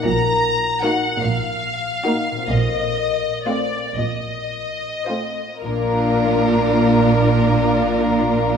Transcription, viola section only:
0.84 A#3 D#4
2.05 A#3 D#4
3.46 A3 C4
5.09 A3 C4
5.64 A#3 D4

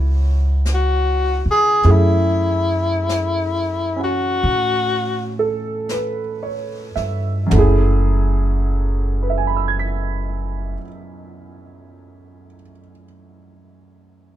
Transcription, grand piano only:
Already playing: A3 C#4 E4 F#4 G#4 C#5
1.84 A3 C#4 E4 G#4
3.96 C#4 F#4
5.39 A4
5.91 B4
6.43 C#5
6.96 E5
7.46 F#2 F#3
7.53 A3 E4
7.59 G#4
9.23 B4
9.30 E5
9.38 G#5
9.47 B5
9.57 E6
9.68 G#6
9.79 B6

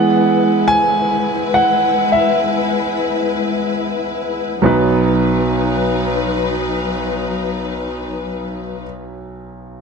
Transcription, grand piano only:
Already playing: E3 G#3 B3 F#5
0.68 G#5
1.54 F#5
2.12 E5
4.62 B1 F#3 B3 D#4 B4

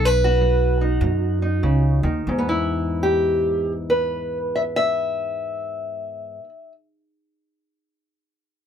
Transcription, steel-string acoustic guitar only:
Already playing: B2
0.05 B4
0.24 F#4
0.41 F#3
0.81 D#4
1.03 B2
1.42 D#4
1.63 C#3
2.03 D#3
2.29 G#2
2.38 B3
2.49 E4
3.03 G4
3.90 B4
4.56 E5
4.76 E5

